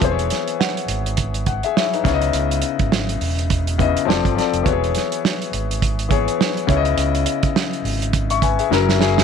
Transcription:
0.01 fingered electric bass E1, grand piano E3 B3 G#4 C5, kick, closed hi-hat
0.11 grand piano C#5
0.19 closed hi-hat
0.30 snare, closed hi-hat
0.48 closed hi-hat
0.60 celesta F#5, snare
0.77 closed hi-hat
0.88 fingered electric bass G#1, closed hi-hat
1.06 closed hi-hat
1.17 kick, closed hi-hat
1.34 closed hi-hat
1.46 grand piano F#5, kick, closed hi-hat
1.63 grand piano G#4 E5, closed hi-hat
1.76 grand piano E4 C#5, snare
1.94 grand piano D#4 B4, closed hi-hat
2.04 fingered electric bass C#2, grand piano C#3 B3 E4 C#5, kick, snare, closed hi-hat
2.14 grand piano D#5
2.22 closed hi-hat
2.33 fingered electric bass C#2, closed hi-hat
2.51 closed hi-hat
2.62 closed hi-hat
2.79 fingered electric bass G#1, kick, closed hi-hat
2.92 snare
3.09 closed hi-hat
3.21 fingered electric bass E1, open hi-hat
3.39 closed hi-hat
3.50 kick, closed hi-hat
3.67 closed hi-hat
3.78 grand piano C#3 B3 E4 D#5, kick, closed hi-hat
3.97 closed hi-hat
4.05 fingered electric bass F1, grand piano F3 C4 A4 D5
4.10 snare
4.25 fingered electric bass G1, kick, closed hi-hat
4.35 grand piano F3 C4 A4 D5, closed hi-hat
4.39 snare
4.54 fingered electric bass F1, closed hi-hat
4.63 fingered electric bass E1, grand piano E3 B3 F#4 C#5, kick, closed hi-hat
4.72 grand piano G#4
4.84 closed hi-hat
4.95 snare, closed hi-hat
5.12 closed hi-hat
5.25 snare
5.42 closed hi-hat
5.53 fingered electric bass G#1, closed hi-hat
5.71 closed hi-hat
5.82 kick, closed hi-hat
5.99 closed hi-hat
6.09 grand piano E3 B3 G#4 C#5, kick, closed hi-hat
6.28 closed hi-hat
6.41 snare
6.57 closed hi-hat
6.67 fingered electric bass C#2, grand piano C#3 B3 E4 C#5, celesta C#5, kick, closed hi-hat
6.77 grand piano D#5
6.85 closed hi-hat
6.97 fingered electric bass C#2, closed hi-hat
7.15 closed hi-hat
7.26 celesta D#5, closed hi-hat
7.43 kick, closed hi-hat
7.56 snare
7.73 closed hi-hat
7.84 fingered electric bass G#1, open hi-hat
8.02 closed hi-hat
8.13 kick, closed hi-hat
8.30 grand piano E5 C#6, closed hi-hat
8.42 grand piano B4 G#5, kick, closed hi-hat
8.59 grand piano G#4 E5, closed hi-hat
8.70 fingered electric bass F#1, grand piano F#3 C#4 E4 A#4, snare
8.89 snare
8.99 grand piano F#3 C#4 E4 G#4, snare
9.18 snare

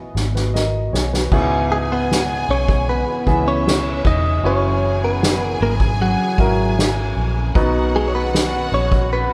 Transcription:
Already playing: grand piano C#3 B3 E4 F#4 G#4, analog synth pad E3 B3 F#4 D#5
0.15 fingered electric bass G#1, snare
0.35 grand piano F#4 B4, snare
0.54 grand piano A#4 D#5, snare
0.93 fingered electric bass B1, grand piano G#4 C#5, snare
1.13 grand piano F#4 B4, snare
1.31 fingered electric bass C#2, grand piano G#2 B3 C#4 E4 G#4, analog synth pad C#3 E3 G#3 B3, violin section G#4 G#5, kick, crash
1.71 clean electric guitar G#3 G#4, ride
1.92 clean electric guitar B3 B4
2.10 snare, ride
2.49 fingered electric bass B1, clean electric guitar C#4 C#5, ride
2.68 kick
2.88 clean electric guitar B3 B4, ride
3.27 fingered electric bass C#2, grand piano E3 B3 C#4 G#4, violin section C#4 E5, kick, ride
3.46 clean electric guitar C#4 C#5, ride
3.66 snare, ride
4.05 fingered electric bass E1, clean electric guitar D#4 D#5, kick, ride
4.43 fingered electric bass F#1, analog synth pad C#3 F#3 C#4, grand piano C#3 C#4 E4 F#4 C#5, clean electric guitar C#4 C#5, violin section G#4 G#5, ride
4.83 ride
5.04 clean electric guitar B3 B4
5.21 snare, ride
5.42 clean electric guitar A#4
5.61 fingered electric bass G#1, clean electric guitar A#3 A#4, ride
5.80 kick, ride
6.00 clean electric guitar F#3 F#4, ride
6.38 fingered electric bass G#1, grand piano C#4 E4 F#4 A#4, kick, ride
6.58 ride
6.77 snare, ride
7.16 fingered electric bass A#1, ride
7.55 fingered electric bass B1, grand piano B2 F#3 B3 D#4 F#4 B4, analog synth pad D#3 B3 F#4, violin section F#4 F#5, kick, ride
7.94 clean electric guitar G#3 G#4, ride
8.08 clean electric guitar C#5
8.15 clean electric guitar B3 B4
8.33 snare, ride
8.72 fingered electric bass A#1, clean electric guitar C#4 C#5, ride
8.92 kick, ride
9.12 clean electric guitar B3 B4, ride

